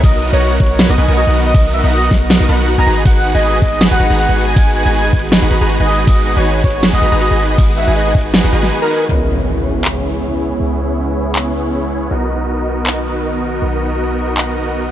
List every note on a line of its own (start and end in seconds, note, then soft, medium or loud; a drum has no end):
0.00 0.31 B1 loud
0.00 2.84 D#3 medium
0.00 9.05 B3 medium
0.00 0.30 B3 loud
0.00 0.30 D#4 medium
0.00 9.05 F#4 medium
0.00 0.60 F#4 medium
0.00 0.30 F#4 medium
0.00 1.93 G#4 medium
0.00 0.30 A#4 medium
0.00 0.20 B4 loud
0.00 1.76 C#5 loud
0.00 0.27 D#5 loud
0.00 0.30 D#5 loud
0.00 0.39 E5 loud
0.00 kick loud
0.00 closed hi-hat medium
0.00 ride soft
0.14 0.29 A#4 medium
0.22 0.41 B4 medium
0.22 closed hi-hat medium
0.33 0.58 B1 loud
0.33 0.58 B3 medium
0.33 0.58 D#4 medium
0.33 0.58 F#4 medium
0.33 0.58 A#4 medium
0.33 0.56 C#5 loud
0.33 0.89 D#5 loud
0.33 0.58 F#5 loud
0.41 0.58 B4 medium
0.41 closed hi-hat medium
0.52 0.70 A#4 medium
0.60 0.87 B1 loud
0.60 0.87 B3 medium
0.60 0.87 D#4 medium
0.60 0.87 F#4 medium
0.60 1.16 F#4 medium
0.60 0.87 A#4 medium
0.60 0.91 C#5 loud
0.60 0.87 F#5 loud
0.60 kick medium
0.60 closed hi-hat soft
0.64 closed hi-hat medium
0.66 closed hi-hat medium
0.71 0.85 A#4 loud
0.79 0.98 B4 loud
0.79 snare loud
0.79 closed hi-hat medium
0.79 ride soft
0.89 0.96 B1 loud
0.89 0.96 B3 medium
0.89 0.96 D#4 medium
0.89 0.96 F#4 medium
0.89 0.96 A#4 medium
0.89 0.96 D#5 medium
0.89 1.12 D#5 loud
0.89 1.27 D#5 medium
0.98 1.06 B1 loud
0.98 1.06 B3 medium
0.98 1.06 D#4 medium
0.98 1.06 F#4 medium
0.98 1.06 A#4 medium
0.98 1.14 B4 loud
0.98 1.06 G#5 medium
0.98 closed hi-hat medium
1.08 1.25 B1 loud
1.08 1.25 B3 loud
1.08 1.25 D#4 medium
1.08 1.25 F#4 medium
1.08 1.25 A#4 medium
1.08 1.42 A#4 loud
1.08 1.25 G#5 loud
1.17 1.54 F#4 medium
1.17 1.40 D#5 medium
1.17 closed hi-hat medium
1.27 1.53 B1 loud
1.27 1.53 B3 medium
1.27 1.53 D#4 medium
1.27 1.53 F#4 medium
1.27 1.53 A#4 medium
1.27 1.46 D#5 medium
1.27 1.53 F#5 medium
1.36 1.71 B4 loud
1.36 closed hi-hat medium
1.36 open hi-hat medium
1.42 closed hi-hat medium
1.46 1.69 D#5 loud
1.46 1.83 D#5 loud
1.54 1.82 B1 loud
1.54 1.81 B3 loud
1.54 1.81 D#4 medium
1.54 1.81 F#4 medium
1.54 2.11 F#4 medium
1.54 1.81 A#4 medium
1.54 1.81 D#5 loud
1.54 kick loud
1.54 closed hi-hat medium
1.54 ride soft
1.65 1.79 A#4 medium
1.73 1.92 B4 medium
1.73 1.89 E5 medium
1.73 closed hi-hat medium
1.84 2.09 B1 loud
1.84 2.09 B3 medium
1.84 2.09 D#4 medium
1.84 2.09 F#4 medium
1.84 2.09 A#4 medium
1.84 2.40 D#5 loud
1.84 2.09 F#5 loud
1.92 2.09 B4 medium
1.92 2.16 D#5 loud
1.92 closed hi-hat medium
2.03 2.21 A#4 medium
2.11 2.38 B1 medium
2.11 2.38 B3 medium
2.11 2.38 D#4 medium
2.11 2.38 F#4 medium
2.11 2.67 F#4 medium
2.11 2.38 A#4 medium
2.11 2.38 F#5 loud
2.11 kick medium
2.11 snare soft
2.11 closed hi-hat soft
2.15 closed hi-hat medium
2.18 2.36 A#4 loud
2.18 closed hi-hat medium
2.30 2.49 B4 loud
2.30 snare loud
2.30 closed hi-hat medium
2.30 ride soft
2.40 2.47 B1 loud
2.40 2.47 B3 medium
2.40 2.47 D#4 medium
2.40 2.47 F#4 medium
2.40 2.47 A#4 medium
2.40 2.47 D#5 medium
2.40 2.78 D#5 medium
2.49 2.76 B1 loud
2.49 2.76 B3 loud
2.49 2.76 D#4 medium
2.49 2.76 F#4 medium
2.49 2.76 A#4 medium
2.49 2.65 B4 loud
2.49 2.76 F#5 loud
2.49 closed hi-hat medium
2.59 2.93 A#4 loud
2.68 3.05 F#4 medium
2.68 closed hi-hat medium
2.78 2.85 B1 loud
2.78 2.85 B3 medium
2.78 2.85 D#4 medium
2.78 2.85 F#4 medium
2.78 2.85 A#4 medium
2.78 2.97 D#5 medium
2.78 2.85 G#5 loud
2.78 3.01 A#5 loud
2.87 3.04 G#1 loud
2.87 9.05 D#3 medium
2.87 9.05 G#3 medium
2.87 3.03 D#4 medium
2.87 3.03 F#4 medium
2.87 3.03 G#4 medium
2.87 3.03 B4 medium
2.87 3.24 B4 loud
2.87 3.03 G#5 loud
2.87 closed hi-hat medium
2.87 open hi-hat medium
2.93 closed hi-hat medium
2.97 3.34 D#5 loud
3.05 3.33 G#1 medium
3.05 3.32 D#4 loud
3.05 3.32 F#4 medium
3.05 3.62 F#4 medium
3.05 3.32 G#4 medium
3.05 3.32 B4 medium
3.05 3.32 F#5 loud
3.05 3.29 F#5 loud
3.05 kick loud
3.05 closed hi-hat medium
3.05 ride soft
3.16 3.53 G#4 medium
3.24 3.43 B4 medium
3.24 closed hi-hat medium
3.35 3.60 G#1 loud
3.35 3.60 D#4 medium
3.35 3.60 F#4 medium
3.35 3.60 G#4 medium
3.35 3.60 B4 medium
3.35 3.91 D#5 loud
3.35 3.57 D#5 loud
3.35 3.60 G#5 loud
3.43 3.80 B4 medium
3.43 closed hi-hat medium
3.54 3.72 G#4 medium
3.62 3.89 G#1 medium
3.62 3.89 D#4 medium
3.62 3.89 F#4 medium
3.62 4.18 F#4 medium
3.62 3.89 G#4 medium
3.62 3.89 B4 medium
3.62 3.86 D#5 loud
3.62 3.89 G#5 loud
3.62 kick medium
3.62 closed hi-hat soft
3.66 closed hi-hat medium
3.68 4.10 G#4 loud
3.68 closed hi-hat medium
3.81 3.99 B4 loud
3.81 snare loud
3.81 closed hi-hat medium
3.81 ride soft
3.91 3.98 G#1 loud
3.91 3.98 D#4 medium
3.91 3.98 F#4 medium
3.91 3.98 G#4 medium
3.91 3.98 B4 medium
3.91 4.29 D#5 medium
3.91 3.98 F#5 medium
3.91 4.14 F#5 loud
4.00 4.08 G#1 loud
4.00 4.08 D#4 medium
4.00 4.08 F#4 medium
4.00 4.08 G#4 medium
4.00 4.08 B4 medium
4.00 4.37 B4 loud
4.00 4.08 A#5 medium
4.00 closed hi-hat medium
4.10 4.27 G#1 loud
4.10 4.27 D#4 loud
4.10 4.27 F#4 medium
4.10 4.66 G#4 loud
4.10 4.27 G#4 medium
4.10 4.27 B4 medium
4.10 4.27 A#5 loud
4.19 4.56 F#4 medium
4.19 4.42 F#5 medium
4.19 closed hi-hat medium
4.29 4.55 G#1 loud
4.29 4.54 D#4 medium
4.29 4.54 F#4 medium
4.29 4.54 G#4 medium
4.29 4.54 B4 medium
4.29 4.47 D#5 medium
4.29 4.54 G#5 medium
4.37 4.75 B4 loud
4.37 closed hi-hat medium
4.37 open hi-hat medium
4.44 4.85 D#5 loud
4.44 closed hi-hat medium
4.48 4.71 G#5 loud
4.56 4.84 G#1 loud
4.56 4.83 D#4 loud
4.56 4.83 F#4 medium
4.56 5.13 F#4 medium
4.56 4.83 G#4 medium
4.56 4.83 B4 medium
4.56 4.83 F#5 loud
4.56 kick loud
4.56 closed hi-hat medium
4.56 ride soft
4.67 5.04 G#4 medium
4.75 4.94 B4 medium
4.75 4.91 G#5 medium
4.75 closed hi-hat medium
4.86 5.11 G#1 loud
4.86 5.11 D#4 medium
4.86 5.11 F#4 medium
4.86 5.11 G#4 medium
4.86 5.11 B4 medium
4.86 5.42 D#5 loud
4.86 5.11 G#5 loud
4.94 5.31 B4 medium
4.94 5.18 G#5 loud
4.94 closed hi-hat medium
5.05 5.23 G#4 medium
5.13 5.40 G#1 loud
5.13 5.40 D#4 medium
5.13 5.40 F#4 medium
5.13 5.69 F#4 medium
5.13 5.40 G#4 medium
5.13 5.40 B4 medium
5.13 5.40 G#5 loud
5.13 kick medium
5.13 closed hi-hat soft
5.17 closed hi-hat medium
5.19 closed hi-hat medium
5.23 5.61 G#4 loud
5.32 5.50 B4 loud
5.32 snare loud
5.32 closed hi-hat medium
5.32 ride soft
5.42 5.49 G#1 loud
5.42 5.49 D#4 medium
5.42 5.49 F#4 medium
5.42 5.49 G#4 medium
5.42 5.49 B4 medium
5.42 5.80 D#5 medium
5.42 5.49 F#5 medium
5.51 5.59 G#1 loud
5.51 5.59 D#4 medium
5.51 5.59 F#4 medium
5.51 5.59 G#4 medium
5.51 5.59 B4 medium
5.51 5.88 B4 loud
5.51 5.59 A#5 medium
5.51 closed hi-hat medium
5.61 5.78 G#1 loud
5.61 5.77 D#4 medium
5.61 5.77 F#4 medium
5.61 5.77 G#4 medium
5.61 6.17 G#4 loud
5.61 5.77 B4 medium
5.61 5.77 A#5 loud
5.70 6.07 F#4 medium
5.70 closed hi-hat medium
5.80 6.06 G#1 loud
5.80 6.05 D#4 medium
5.80 6.05 F#4 medium
5.80 6.05 G#4 medium
5.80 6.05 B4 medium
5.80 6.03 D#5 loud
5.80 5.98 D#5 medium
5.80 6.05 G#5 medium
5.88 6.26 B4 loud
5.88 closed hi-hat medium
5.88 open hi-hat medium
5.95 closed hi-hat medium
5.99 6.36 D#5 loud
6.07 6.35 G#1 loud
6.07 6.34 D#4 medium
6.07 6.64 F#4 medium
6.07 6.34 F#4 medium
6.07 6.34 G#4 medium
6.07 6.34 B4 medium
6.07 6.38 D#5 loud
6.07 6.34 F#5 loud
6.07 kick loud
6.07 closed hi-hat medium
6.07 ride soft
6.18 6.55 G#4 medium
6.26 6.45 B4 medium
6.26 closed hi-hat medium
6.37 6.62 G#1 loud
6.37 6.62 D#4 medium
6.37 6.62 F#4 medium
6.37 6.62 G#4 medium
6.37 6.62 B4 medium
6.37 6.59 C#5 loud
6.37 6.93 D#5 loud
6.37 6.62 G#5 loud
6.45 6.82 B4 medium
6.45 closed hi-hat medium
6.56 6.74 G#4 medium
6.64 6.91 G#1 loud
6.64 6.91 D#4 medium
6.64 6.91 F#4 medium
6.64 7.20 F#4 medium
6.64 6.91 G#4 medium
6.64 6.91 B4 medium
6.64 6.88 C#5 loud
6.64 6.91 G#5 loud
6.64 kick medium
6.64 closed hi-hat medium
6.67 closed hi-hat medium
6.70 closed hi-hat medium
6.74 7.12 G#4 loud
6.83 7.01 B4 loud
6.83 snare loud
6.83 closed hi-hat medium
6.83 ride soft
6.93 7.00 G#1 loud
6.93 7.00 D#4 medium
6.93 7.00 F#4 medium
6.93 7.00 G#4 medium
6.93 7.00 B4 medium
6.93 7.31 D#5 medium
6.93 7.16 D#5 medium
6.93 7.00 F#5 medium
7.02 7.10 G#1 loud
7.02 7.10 D#4 medium
7.02 7.10 F#4 medium
7.02 7.10 G#4 medium
7.02 7.10 B4 medium
7.02 7.39 B4 loud
7.02 7.10 A#5 medium
7.02 closed hi-hat medium
7.12 7.29 G#1 loud
7.12 7.28 D#4 loud
7.12 7.28 F#4 medium
7.12 7.28 G#4 medium
7.12 7.68 G#4 loud
7.12 7.28 B4 medium
7.12 7.28 A#5 loud
7.21 7.58 F#4 medium
7.21 7.44 D#5 medium
7.21 closed hi-hat medium
7.31 7.57 G#1 loud
7.31 7.56 D#4 medium
7.31 7.56 F#4 medium
7.31 7.56 G#4 medium
7.31 7.56 B4 medium
7.31 7.49 D#5 medium
7.31 7.56 G#5 medium
7.40 7.77 B4 loud
7.40 closed hi-hat medium
7.40 open hi-hat medium
7.46 closed hi-hat medium
7.50 7.87 D#5 loud
7.50 7.73 D#5 loud
7.58 7.85 G#1 medium
7.58 7.85 D#4 medium
7.58 7.85 F#4 medium
7.58 7.85 G#4 medium
7.58 7.85 B4 medium
7.58 7.85 F#5 loud
7.58 kick loud
7.58 closed hi-hat medium
7.58 ride soft
7.69 8.06 G#4 medium
7.77 7.96 B4 medium
7.77 7.93 E5 medium
7.77 closed hi-hat medium
7.87 8.13 G#1 loud
7.87 8.13 D#4 medium
7.87 8.13 F#4 medium
7.87 8.13 G#4 medium
7.87 8.13 B4 medium
7.87 8.44 D#5 loud
7.87 8.13 G#5 loud
7.96 8.33 B4 medium
7.96 8.20 D#5 loud
7.96 closed hi-hat medium
8.06 8.25 G#4 medium
8.15 8.42 G#1 loud
8.15 8.42 D#4 medium
8.15 8.81 F#4 medium
8.15 8.42 F#4 medium
8.15 8.42 G#4 medium
8.15 8.42 B4 medium
8.15 8.42 G#5 loud
8.15 kick medium
8.15 closed hi-hat medium
8.18 closed hi-hat medium
8.21 9.00 G#4 loud
8.21 closed hi-hat medium
8.34 8.62 B4 loud
8.34 snare loud
8.34 closed hi-hat medium
8.34 ride soft
8.44 8.51 G#1 loud
8.44 8.51 D#4 medium
8.44 8.51 F#4 medium
8.44 8.51 G#4 medium
8.44 8.51 B4 medium
8.44 8.52 D#5 medium
8.44 8.51 F#5 medium
8.53 8.72 G#1 loud
8.53 8.79 D#4 loud
8.53 8.79 F#4 medium
8.53 8.79 G#4 medium
8.53 8.79 B4 medium
8.53 8.90 D#5 loud
8.53 8.79 G#5 loud
8.53 closed hi-hat medium
8.63 10.68 B4 medium
8.63 snare soft
8.71 10.07 B5 medium
8.71 closed hi-hat medium
8.82 8.88 D#4 medium
8.82 11.25 F#4 medium
8.82 8.88 F#4 medium
8.82 8.88 G#4 medium
8.82 9.05 A#4 loud
8.82 8.88 B4 medium
8.82 8.88 A#5 loud
8.90 9.07 D#4 medium
8.90 9.07 F#4 medium
8.90 9.07 G#4 medium
8.90 9.07 B4 medium
8.90 10.69 D#5 medium
8.90 9.07 G#5 loud
8.90 closed hi-hat medium
8.90 open hi-hat medium
8.96 closed hi-hat medium
9.01 11.28 G#4 medium
9.09 10.58 C#2 medium
9.09 12.08 C#3 medium
9.09 12.08 G#3 medium
9.09 12.09 B3 medium
9.09 12.08 B3 medium
9.09 12.09 C#4 medium
9.09 12.08 E4 medium
9.09 12.09 E4 medium
9.09 12.09 G#4 medium
9.09 12.09 C#5 medium
9.09 impact medium
9.85 clap medium
10.60 12.09 C#2 medium
11.36 clap medium
12.11 13.60 B1 medium
12.11 14.91 D#3 medium
12.11 14.91 B3 medium
12.11 14.91 D#4 medium
12.11 14.91 F#4 medium
12.11 14.91 A#4 medium
12.11 14.91 D#5 medium
12.87 clap medium
13.62 14.91 B1 medium
14.38 clap medium